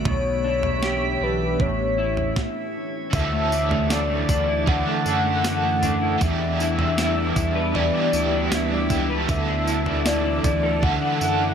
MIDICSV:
0, 0, Header, 1, 8, 480
1, 0, Start_track
1, 0, Tempo, 769231
1, 36, Time_signature, 4, 2, 24, 8
1, 7202, End_track
2, 0, Start_track
2, 0, Title_t, "Synth texture"
2, 0, Program_c, 0, 99
2, 0, Note_on_c, 0, 83, 89
2, 0, Note_on_c, 0, 88, 63
2, 0, Note_on_c, 0, 98, 52
2, 35, Note_on_c, 0, 76, 86
2, 251, Note_off_c, 0, 83, 0
2, 385, Note_off_c, 0, 98, 0
2, 523, Note_off_c, 0, 88, 0
2, 1210, Note_off_c, 0, 76, 0
2, 1471, Note_on_c, 0, 73, 76
2, 2169, Note_off_c, 0, 73, 0
2, 2197, Note_on_c, 0, 74, 61
2, 3411, Note_off_c, 0, 74, 0
2, 4837, Note_on_c, 0, 76, 74
2, 6011, Note_off_c, 0, 76, 0
2, 7202, End_track
3, 0, Start_track
3, 0, Title_t, "Soft synth lead"
3, 0, Program_c, 1, 80
3, 42, Note_on_c, 1, 73, 127
3, 768, Note_on_c, 1, 71, 95
3, 778, Note_off_c, 1, 73, 0
3, 1005, Note_on_c, 1, 73, 105
3, 1015, Note_off_c, 1, 71, 0
3, 1720, Note_off_c, 1, 73, 0
3, 1962, Note_on_c, 1, 76, 127
3, 2444, Note_on_c, 1, 74, 98
3, 2454, Note_off_c, 1, 76, 0
3, 2922, Note_on_c, 1, 78, 127
3, 2931, Note_off_c, 1, 74, 0
3, 3843, Note_off_c, 1, 78, 0
3, 3843, Note_on_c, 1, 78, 78
3, 3886, Note_on_c, 1, 76, 118
3, 3896, Note_off_c, 1, 78, 0
3, 4839, Note_on_c, 1, 74, 93
3, 4849, Note_off_c, 1, 76, 0
3, 5557, Note_off_c, 1, 74, 0
3, 5801, Note_on_c, 1, 76, 100
3, 6282, Note_on_c, 1, 74, 82
3, 6292, Note_off_c, 1, 76, 0
3, 6761, Note_on_c, 1, 78, 109
3, 6770, Note_off_c, 1, 74, 0
3, 7202, Note_off_c, 1, 78, 0
3, 7202, End_track
4, 0, Start_track
4, 0, Title_t, "Clean electric guitar"
4, 0, Program_c, 2, 27
4, 0, Note_on_c, 2, 54, 68
4, 0, Note_on_c, 2, 57, 48
4, 0, Note_on_c, 2, 62, 57
4, 0, Note_on_c, 2, 66, 64
4, 37, Note_on_c, 2, 47, 67
4, 83, Note_off_c, 2, 54, 0
4, 83, Note_off_c, 2, 62, 0
4, 83, Note_off_c, 2, 66, 0
4, 84, Note_off_c, 2, 57, 0
4, 276, Note_on_c, 2, 62, 54
4, 517, Note_on_c, 2, 67, 63
4, 748, Note_off_c, 2, 62, 0
4, 756, Note_on_c, 2, 62, 50
4, 996, Note_off_c, 2, 47, 0
4, 996, Note_on_c, 2, 45, 76
4, 1044, Note_off_c, 2, 62, 0
4, 1044, Note_off_c, 2, 67, 0
4, 1235, Note_on_c, 2, 64, 60
4, 1524, Note_off_c, 2, 45, 0
4, 1836, Note_off_c, 2, 64, 0
4, 1955, Note_on_c, 2, 50, 81
4, 2075, Note_on_c, 2, 57, 59
4, 2196, Note_on_c, 2, 62, 57
4, 2308, Note_off_c, 2, 57, 0
4, 2315, Note_on_c, 2, 57, 62
4, 2434, Note_off_c, 2, 62, 0
4, 2436, Note_on_c, 2, 62, 64
4, 2549, Note_off_c, 2, 57, 0
4, 2556, Note_on_c, 2, 57, 60
4, 2674, Note_off_c, 2, 62, 0
4, 2676, Note_on_c, 2, 62, 62
4, 2794, Note_on_c, 2, 64, 61
4, 2912, Note_off_c, 2, 50, 0
4, 2915, Note_on_c, 2, 50, 86
4, 3028, Note_off_c, 2, 57, 0
4, 3036, Note_on_c, 2, 57, 58
4, 3152, Note_off_c, 2, 62, 0
4, 3155, Note_on_c, 2, 62, 64
4, 3266, Note_off_c, 2, 57, 0
4, 3273, Note_on_c, 2, 57, 58
4, 3393, Note_off_c, 2, 62, 0
4, 3395, Note_on_c, 2, 62, 64
4, 3508, Note_off_c, 2, 57, 0
4, 3516, Note_on_c, 2, 57, 59
4, 3632, Note_off_c, 2, 62, 0
4, 3635, Note_on_c, 2, 62, 62
4, 3753, Note_off_c, 2, 64, 0
4, 3755, Note_on_c, 2, 64, 60
4, 3873, Note_off_c, 2, 50, 0
4, 3875, Note_on_c, 2, 52, 88
4, 3924, Note_off_c, 2, 57, 0
4, 3992, Note_off_c, 2, 62, 0
4, 3995, Note_on_c, 2, 62, 57
4, 4014, Note_off_c, 2, 64, 0
4, 4113, Note_on_c, 2, 64, 62
4, 4230, Note_off_c, 2, 62, 0
4, 4233, Note_on_c, 2, 62, 61
4, 4350, Note_off_c, 2, 64, 0
4, 4352, Note_on_c, 2, 64, 65
4, 4471, Note_off_c, 2, 62, 0
4, 4474, Note_on_c, 2, 62, 61
4, 4590, Note_off_c, 2, 64, 0
4, 4593, Note_on_c, 2, 64, 60
4, 4714, Note_on_c, 2, 71, 60
4, 4831, Note_off_c, 2, 52, 0
4, 4834, Note_on_c, 2, 52, 89
4, 4951, Note_off_c, 2, 62, 0
4, 4954, Note_on_c, 2, 62, 62
4, 5073, Note_off_c, 2, 64, 0
4, 5075, Note_on_c, 2, 64, 65
4, 5192, Note_off_c, 2, 62, 0
4, 5195, Note_on_c, 2, 62, 60
4, 5311, Note_off_c, 2, 64, 0
4, 5314, Note_on_c, 2, 64, 65
4, 5433, Note_off_c, 2, 62, 0
4, 5435, Note_on_c, 2, 62, 65
4, 5551, Note_off_c, 2, 64, 0
4, 5554, Note_on_c, 2, 64, 58
4, 5667, Note_off_c, 2, 71, 0
4, 5675, Note_on_c, 2, 71, 64
4, 5792, Note_off_c, 2, 52, 0
4, 5794, Note_on_c, 2, 50, 82
4, 5843, Note_off_c, 2, 71, 0
4, 5911, Note_off_c, 2, 62, 0
4, 5913, Note_on_c, 2, 62, 60
4, 5932, Note_off_c, 2, 64, 0
4, 6035, Note_on_c, 2, 64, 63
4, 6153, Note_off_c, 2, 62, 0
4, 6156, Note_on_c, 2, 62, 64
4, 6272, Note_off_c, 2, 64, 0
4, 6274, Note_on_c, 2, 64, 66
4, 6392, Note_off_c, 2, 62, 0
4, 6394, Note_on_c, 2, 62, 66
4, 6512, Note_off_c, 2, 64, 0
4, 6515, Note_on_c, 2, 64, 62
4, 6633, Note_on_c, 2, 69, 66
4, 6750, Note_off_c, 2, 50, 0
4, 6753, Note_on_c, 2, 50, 85
4, 6872, Note_off_c, 2, 62, 0
4, 6874, Note_on_c, 2, 62, 65
4, 6990, Note_off_c, 2, 64, 0
4, 6993, Note_on_c, 2, 64, 61
4, 7111, Note_off_c, 2, 62, 0
4, 7114, Note_on_c, 2, 62, 62
4, 7202, Note_off_c, 2, 50, 0
4, 7202, Note_off_c, 2, 62, 0
4, 7202, Note_off_c, 2, 64, 0
4, 7202, Note_off_c, 2, 69, 0
4, 7202, End_track
5, 0, Start_track
5, 0, Title_t, "Overdriven electric guitar"
5, 0, Program_c, 3, 29
5, 1937, Note_on_c, 3, 50, 77
5, 1956, Note_on_c, 3, 52, 88
5, 1969, Note_on_c, 3, 57, 81
5, 1983, Note_on_c, 3, 62, 84
5, 1996, Note_on_c, 3, 69, 86
5, 2906, Note_off_c, 3, 50, 0
5, 2909, Note_on_c, 3, 50, 88
5, 2915, Note_off_c, 3, 52, 0
5, 2916, Note_off_c, 3, 57, 0
5, 2917, Note_on_c, 3, 52, 86
5, 2924, Note_on_c, 3, 57, 84
5, 2927, Note_off_c, 3, 62, 0
5, 2928, Note_off_c, 3, 69, 0
5, 2929, Note_on_c, 3, 62, 84
5, 2935, Note_on_c, 3, 69, 86
5, 3137, Note_off_c, 3, 69, 0
5, 3145, Note_on_c, 3, 69, 52
5, 3152, Note_off_c, 3, 50, 0
5, 3156, Note_off_c, 3, 52, 0
5, 3158, Note_off_c, 3, 62, 0
5, 3160, Note_off_c, 3, 57, 0
5, 3165, Note_on_c, 3, 62, 46
5, 3181, Note_on_c, 3, 57, 49
5, 3858, Note_on_c, 3, 52, 77
5, 3870, Note_off_c, 3, 69, 0
5, 3878, Note_off_c, 3, 57, 0
5, 3880, Note_on_c, 3, 59, 84
5, 3895, Note_off_c, 3, 62, 0
5, 3897, Note_on_c, 3, 62, 89
5, 3916, Note_on_c, 3, 67, 85
5, 4829, Note_off_c, 3, 52, 0
5, 4831, Note_on_c, 3, 52, 75
5, 4833, Note_off_c, 3, 59, 0
5, 4841, Note_on_c, 3, 59, 81
5, 4846, Note_off_c, 3, 62, 0
5, 4848, Note_off_c, 3, 67, 0
5, 4848, Note_on_c, 3, 62, 85
5, 4856, Note_on_c, 3, 67, 93
5, 5057, Note_off_c, 3, 67, 0
5, 5065, Note_on_c, 3, 67, 54
5, 5073, Note_off_c, 3, 52, 0
5, 5077, Note_off_c, 3, 62, 0
5, 5078, Note_off_c, 3, 59, 0
5, 5085, Note_on_c, 3, 62, 51
5, 5103, Note_on_c, 3, 59, 43
5, 5540, Note_off_c, 3, 67, 0
5, 5547, Note_on_c, 3, 67, 56
5, 5565, Note_off_c, 3, 62, 0
5, 5568, Note_on_c, 3, 62, 54
5, 5570, Note_off_c, 3, 59, 0
5, 5585, Note_on_c, 3, 59, 49
5, 5778, Note_on_c, 3, 50, 77
5, 5792, Note_off_c, 3, 67, 0
5, 5796, Note_on_c, 3, 52, 83
5, 5802, Note_off_c, 3, 62, 0
5, 5808, Note_off_c, 3, 59, 0
5, 5811, Note_on_c, 3, 57, 81
5, 5824, Note_on_c, 3, 62, 85
5, 5836, Note_on_c, 3, 69, 94
5, 6744, Note_off_c, 3, 50, 0
5, 6747, Note_on_c, 3, 50, 87
5, 6753, Note_off_c, 3, 52, 0
5, 6755, Note_off_c, 3, 57, 0
5, 6755, Note_on_c, 3, 52, 82
5, 6762, Note_on_c, 3, 57, 101
5, 6766, Note_off_c, 3, 62, 0
5, 6766, Note_off_c, 3, 69, 0
5, 6769, Note_on_c, 3, 62, 84
5, 6773, Note_on_c, 3, 69, 89
5, 6978, Note_off_c, 3, 69, 0
5, 6986, Note_on_c, 3, 69, 47
5, 6991, Note_off_c, 3, 50, 0
5, 6996, Note_off_c, 3, 52, 0
5, 6998, Note_off_c, 3, 62, 0
5, 6999, Note_off_c, 3, 57, 0
5, 7005, Note_on_c, 3, 62, 51
5, 7022, Note_on_c, 3, 57, 46
5, 7202, Note_off_c, 3, 57, 0
5, 7202, Note_off_c, 3, 62, 0
5, 7202, Note_off_c, 3, 69, 0
5, 7202, End_track
6, 0, Start_track
6, 0, Title_t, "Ambient pad"
6, 0, Program_c, 4, 92
6, 0, Note_on_c, 4, 59, 64
6, 37, Note_on_c, 4, 67, 86
6, 39, Note_on_c, 4, 62, 71
6, 40, Note_on_c, 4, 52, 75
6, 971, Note_off_c, 4, 59, 0
6, 988, Note_off_c, 4, 62, 0
6, 1462, Note_off_c, 4, 67, 0
6, 1464, Note_off_c, 4, 52, 0
6, 1956, Note_on_c, 4, 52, 78
6, 1956, Note_on_c, 4, 64, 77
6, 1957, Note_on_c, 4, 62, 77
6, 1958, Note_on_c, 4, 57, 77
6, 1958, Note_on_c, 4, 69, 93
6, 3857, Note_off_c, 4, 52, 0
6, 3858, Note_off_c, 4, 57, 0
6, 3858, Note_off_c, 4, 69, 0
6, 3875, Note_on_c, 4, 59, 73
6, 3876, Note_on_c, 4, 71, 90
6, 3877, Note_on_c, 4, 55, 79
6, 5776, Note_off_c, 4, 59, 0
6, 5777, Note_off_c, 4, 55, 0
6, 5777, Note_off_c, 4, 71, 0
6, 5792, Note_on_c, 4, 52, 70
6, 5793, Note_on_c, 4, 69, 88
6, 5795, Note_on_c, 4, 57, 79
6, 7202, Note_off_c, 4, 52, 0
6, 7202, Note_off_c, 4, 57, 0
6, 7202, Note_off_c, 4, 62, 0
6, 7202, Note_off_c, 4, 64, 0
6, 7202, Note_off_c, 4, 69, 0
6, 7202, End_track
7, 0, Start_track
7, 0, Title_t, "Sub bass"
7, 0, Program_c, 5, 38
7, 35, Note_on_c, 5, 35, 85
7, 731, Note_off_c, 5, 35, 0
7, 754, Note_on_c, 5, 35, 105
7, 983, Note_off_c, 5, 35, 0
7, 998, Note_on_c, 5, 33, 87
7, 1453, Note_off_c, 5, 33, 0
7, 1957, Note_on_c, 5, 38, 99
7, 2651, Note_off_c, 5, 38, 0
7, 2677, Note_on_c, 5, 38, 103
7, 3018, Note_off_c, 5, 38, 0
7, 3155, Note_on_c, 5, 42, 95
7, 3850, Note_off_c, 5, 42, 0
7, 3877, Note_on_c, 5, 40, 96
7, 4571, Note_off_c, 5, 40, 0
7, 4595, Note_on_c, 5, 40, 106
7, 4937, Note_off_c, 5, 40, 0
7, 5073, Note_on_c, 5, 38, 100
7, 5303, Note_off_c, 5, 38, 0
7, 5315, Note_on_c, 5, 38, 97
7, 5543, Note_off_c, 5, 38, 0
7, 5555, Note_on_c, 5, 37, 97
7, 5783, Note_off_c, 5, 37, 0
7, 5796, Note_on_c, 5, 38, 111
7, 6491, Note_off_c, 5, 38, 0
7, 6515, Note_on_c, 5, 38, 95
7, 6858, Note_off_c, 5, 38, 0
7, 6995, Note_on_c, 5, 42, 96
7, 7202, Note_off_c, 5, 42, 0
7, 7202, End_track
8, 0, Start_track
8, 0, Title_t, "Drums"
8, 33, Note_on_c, 9, 43, 105
8, 36, Note_on_c, 9, 36, 112
8, 96, Note_off_c, 9, 43, 0
8, 98, Note_off_c, 9, 36, 0
8, 394, Note_on_c, 9, 43, 67
8, 457, Note_off_c, 9, 43, 0
8, 515, Note_on_c, 9, 38, 100
8, 578, Note_off_c, 9, 38, 0
8, 997, Note_on_c, 9, 36, 86
8, 997, Note_on_c, 9, 43, 68
8, 1059, Note_off_c, 9, 43, 0
8, 1060, Note_off_c, 9, 36, 0
8, 1356, Note_on_c, 9, 43, 51
8, 1418, Note_off_c, 9, 43, 0
8, 1475, Note_on_c, 9, 36, 92
8, 1475, Note_on_c, 9, 38, 80
8, 1537, Note_off_c, 9, 38, 0
8, 1538, Note_off_c, 9, 36, 0
8, 1953, Note_on_c, 9, 43, 119
8, 1953, Note_on_c, 9, 54, 64
8, 1955, Note_on_c, 9, 36, 117
8, 2016, Note_off_c, 9, 43, 0
8, 2016, Note_off_c, 9, 54, 0
8, 2018, Note_off_c, 9, 36, 0
8, 2197, Note_on_c, 9, 54, 62
8, 2260, Note_off_c, 9, 54, 0
8, 2316, Note_on_c, 9, 43, 71
8, 2379, Note_off_c, 9, 43, 0
8, 2436, Note_on_c, 9, 38, 116
8, 2437, Note_on_c, 9, 54, 77
8, 2498, Note_off_c, 9, 38, 0
8, 2499, Note_off_c, 9, 54, 0
8, 2676, Note_on_c, 9, 36, 101
8, 2677, Note_on_c, 9, 43, 67
8, 2677, Note_on_c, 9, 54, 65
8, 2739, Note_off_c, 9, 36, 0
8, 2739, Note_off_c, 9, 43, 0
8, 2739, Note_off_c, 9, 54, 0
8, 2917, Note_on_c, 9, 36, 101
8, 2917, Note_on_c, 9, 43, 74
8, 2979, Note_off_c, 9, 36, 0
8, 2979, Note_off_c, 9, 43, 0
8, 3156, Note_on_c, 9, 54, 72
8, 3219, Note_off_c, 9, 54, 0
8, 3397, Note_on_c, 9, 54, 93
8, 3398, Note_on_c, 9, 38, 106
8, 3460, Note_off_c, 9, 38, 0
8, 3460, Note_off_c, 9, 54, 0
8, 3636, Note_on_c, 9, 43, 67
8, 3636, Note_on_c, 9, 54, 68
8, 3698, Note_off_c, 9, 43, 0
8, 3698, Note_off_c, 9, 54, 0
8, 3876, Note_on_c, 9, 36, 122
8, 3878, Note_on_c, 9, 43, 115
8, 3878, Note_on_c, 9, 54, 69
8, 3938, Note_off_c, 9, 36, 0
8, 3940, Note_off_c, 9, 43, 0
8, 3940, Note_off_c, 9, 54, 0
8, 4119, Note_on_c, 9, 54, 63
8, 4182, Note_off_c, 9, 54, 0
8, 4235, Note_on_c, 9, 43, 69
8, 4298, Note_off_c, 9, 43, 0
8, 4356, Note_on_c, 9, 38, 114
8, 4357, Note_on_c, 9, 54, 84
8, 4418, Note_off_c, 9, 38, 0
8, 4419, Note_off_c, 9, 54, 0
8, 4594, Note_on_c, 9, 43, 68
8, 4594, Note_on_c, 9, 54, 65
8, 4596, Note_on_c, 9, 36, 102
8, 4656, Note_off_c, 9, 43, 0
8, 4656, Note_off_c, 9, 54, 0
8, 4658, Note_off_c, 9, 36, 0
8, 4836, Note_on_c, 9, 43, 72
8, 4899, Note_off_c, 9, 43, 0
8, 5074, Note_on_c, 9, 54, 71
8, 5136, Note_off_c, 9, 54, 0
8, 5314, Note_on_c, 9, 54, 87
8, 5315, Note_on_c, 9, 38, 112
8, 5377, Note_off_c, 9, 38, 0
8, 5377, Note_off_c, 9, 54, 0
8, 5554, Note_on_c, 9, 43, 66
8, 5554, Note_on_c, 9, 54, 67
8, 5555, Note_on_c, 9, 36, 88
8, 5617, Note_off_c, 9, 36, 0
8, 5617, Note_off_c, 9, 43, 0
8, 5617, Note_off_c, 9, 54, 0
8, 5795, Note_on_c, 9, 36, 127
8, 5796, Note_on_c, 9, 43, 116
8, 5796, Note_on_c, 9, 54, 68
8, 5858, Note_off_c, 9, 36, 0
8, 5859, Note_off_c, 9, 43, 0
8, 5859, Note_off_c, 9, 54, 0
8, 6037, Note_on_c, 9, 54, 64
8, 6099, Note_off_c, 9, 54, 0
8, 6155, Note_on_c, 9, 43, 66
8, 6217, Note_off_c, 9, 43, 0
8, 6275, Note_on_c, 9, 38, 113
8, 6276, Note_on_c, 9, 54, 78
8, 6337, Note_off_c, 9, 38, 0
8, 6339, Note_off_c, 9, 54, 0
8, 6516, Note_on_c, 9, 36, 103
8, 6516, Note_on_c, 9, 43, 64
8, 6516, Note_on_c, 9, 54, 66
8, 6579, Note_off_c, 9, 36, 0
8, 6579, Note_off_c, 9, 43, 0
8, 6579, Note_off_c, 9, 54, 0
8, 6757, Note_on_c, 9, 36, 96
8, 6758, Note_on_c, 9, 43, 72
8, 6819, Note_off_c, 9, 36, 0
8, 6820, Note_off_c, 9, 43, 0
8, 6996, Note_on_c, 9, 54, 73
8, 7058, Note_off_c, 9, 54, 0
8, 7202, End_track
0, 0, End_of_file